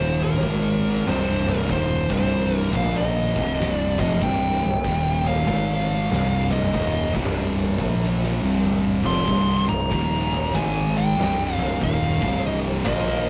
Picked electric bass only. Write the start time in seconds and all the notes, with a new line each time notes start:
Already playing: D#1
0.43 G#1
1.06 C1
1.69 D#1
2.10 C1
2.73 A#1
3.37 C1
3.99 F1
4.22 C1
4.64 C1
4.84 D#1
5.47 G#1
6.12 C1
6.74 D#1
7.15 C1
7.78 A#1
8.42 C1
9.05 F1
9.28 C1
9.69 C1
9.92 D#1
10.55 G#1
11.18 C1
11.81 D#1
12.23 C1
12.85 A#1